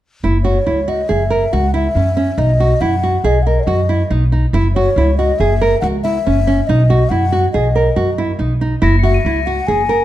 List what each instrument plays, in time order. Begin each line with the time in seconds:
0.23 upright bass F#1, nylon-string guitar E4
0.44 nylon-string guitar F#4, flute C#5
0.67 upright bass C#2, nylon-string guitar E4
0.88 nylon-string guitar F#4, flute D#5
1.09 upright bass F#1, nylon-string guitar G#4, flute E5
1.30 nylon-string guitar A#4
1.53 upright bass C#2, nylon-string guitar F#4, flute F#5
1.74 nylon-string guitar E4, flute E5
1.95 upright bass F#2, nylon-string guitar C#4
2.17 nylon-string guitar C#4
2.38 upright bass B1, nylon-string guitar D#4, flute D#5
2.60 nylon-string guitar F#4
2.81 upright bass F#2, nylon-string guitar E4, flute F#5
3.03 nylon-string guitar F#4
3.24 upright bass B1, nylon-string guitar G#4, flute D#5
3.42 flute D#5 F#5
3.47 nylon-string guitar A#4
3.59 flute C#5 D#5
3.67 upright bass F#2, nylon-string guitar F#4
3.89 nylon-string guitar E4
4.10 upright bass B1, nylon-string guitar D#4
4.32 nylon-string guitar D#4
4.53 upright bass F#1, nylon-string guitar E4
4.75 nylon-string guitar F#4, flute C#5
4.96 upright bass C#2, nylon-string guitar E4
5.17 nylon-string guitar F#4, flute D#5
5.39 upright bass F#1, nylon-string guitar G#4, flute E5
5.61 nylon-string guitar A#4
5.81 upright bass C#2, nylon-string guitar F#4, flute F#5
6.03 nylon-string guitar E4, flute E5
6.26 upright bass F#1, nylon-string guitar C#4
6.47 nylon-string guitar C#4
6.67 upright bass B1, nylon-string guitar D#4, flute D#5
6.90 nylon-string guitar F#4
7.09 upright bass F#2, nylon-string guitar E4, flute F#5
7.32 nylon-string guitar F#4
7.53 upright bass B1, nylon-string guitar G#4, flute D#5
7.75 nylon-string guitar A#4
7.96 upright bass F#2, nylon-string guitar F#4
8.18 nylon-string guitar E4
8.39 upright bass B1, nylon-string guitar D#4
8.61 nylon-string guitar D#4
8.82 upright bass F#1, nylon-string guitar E4, crotales A#6
8.99 crotales C#7
9.03 nylon-string guitar F#4, flute E5
9.14 crotales D#7
9.25 upright bass C#2, nylon-string guitar E4
9.46 nylon-string guitar F#4, flute F#5
9.67 upright bass F#1, nylon-string guitar G#4, flute G#5
9.89 nylon-string guitar A#4